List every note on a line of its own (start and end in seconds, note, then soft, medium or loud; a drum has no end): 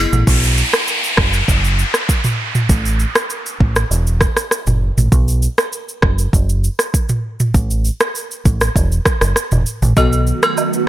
0.13 0.23 A1 medium
0.13 mid tom loud
0.13 shaker medium
0.27 0.62 B1 loud
0.27 kick loud
0.27 downlifter medium
0.27 shaker medium
0.43 shaker medium
0.58 shaker medium
0.73 cross-stick loud
0.73 shaker medium
0.88 shaker medium
1.04 shaker medium
1.17 1.41 F#1 loud
1.17 kick loud
1.17 cross-stick loud
1.33 shaker medium
1.48 1.83 F#1 loud
1.48 kick medium
1.48 shaker medium
1.64 shaker soft
1.79 shaker medium
1.94 cross-stick medium
1.94 shaker medium
2.09 kick medium
2.09 shaker medium
2.24 mid tom medium
2.24 shaker medium
2.55 mid tom medium
2.55 shaker medium
2.69 3.04 A1 loud
2.69 kick loud
2.69 shaker medium
2.85 shaker medium
2.99 shaker medium
3.15 cross-stick loud
3.15 shaker medium
3.30 shaker medium
3.46 shaker medium
3.60 3.83 A1 medium
3.60 kick loud
3.76 cross-stick medium
3.76 shaker medium
3.91 4.25 E1 loud
3.91 shaker medium
4.07 shaker soft
4.21 kick medium
4.21 cross-stick loud
4.21 shaker medium
4.37 cross-stick medium
4.37 shaker medium
4.51 cross-stick medium
4.51 shaker medium
4.67 4.90 F#1 medium
4.67 mid tom medium
4.67 shaker medium
4.97 5.08 A1 medium
4.97 mid tom loud
4.97 shaker medium
5.12 5.46 B1 loud
5.12 kick loud
5.12 shaker medium
5.28 shaker medium
5.42 shaker medium
5.58 cross-stick loud
5.58 shaker soft
5.73 shaker medium
5.89 shaker medium
6.02 6.26 F#1 medium
6.02 kick loud
6.02 cross-stick loud
6.18 shaker medium
6.33 6.68 F#1 loud
6.33 kick medium
6.33 shaker medium
6.49 shaker soft
6.64 shaker medium
6.79 cross-stick medium
6.79 shaker medium
6.94 kick medium
6.94 shaker medium
7.09 mid tom medium
7.09 shaker soft
7.40 mid tom loud
7.40 shaker medium
7.54 7.89 A1 loud
7.54 kick loud
7.54 shaker medium
7.70 shaker medium
7.85 shaker medium
8.00 cross-stick loud
8.00 shaker soft
8.15 shaker medium
8.31 shaker medium
8.45 8.68 A1 medium
8.45 kick loud
8.45 shaker medium
8.61 cross-stick medium
8.61 shaker medium
8.76 8.98 E1 loud
8.76 kick medium
8.76 shaker medium
8.92 shaker medium
9.05 kick medium
9.05 cross-stick loud
9.05 shaker medium
9.21 9.32 F#1 medium
9.21 cross-stick medium
9.21 shaker medium
9.36 cross-stick medium
9.36 shaker medium
9.51 9.63 E1 medium
9.51 mid tom medium
9.51 shaker medium
9.66 shaker medium
9.82 9.93 A1 medium
9.82 mid tom medium
9.82 shaker medium
9.96 10.31 B1 loud
9.96 10.87 D#3 medium
9.96 10.88 F#3 medium
9.96 10.87 A3 medium
9.96 10.87 B3 medium
9.96 10.81 B3 medium
9.96 10.87 F#4 medium
9.96 10.81 F#4 medium
9.96 10.81 A4 medium
9.96 10.81 D#5 loud
9.96 kick loud
9.96 high agogo medium
9.96 shaker medium
10.13 shaker medium
10.27 shaker medium
10.43 cross-stick loud
10.43 high agogo medium
10.43 shaker medium
10.57 low woodblock medium
10.57 shaker medium
10.73 shaker medium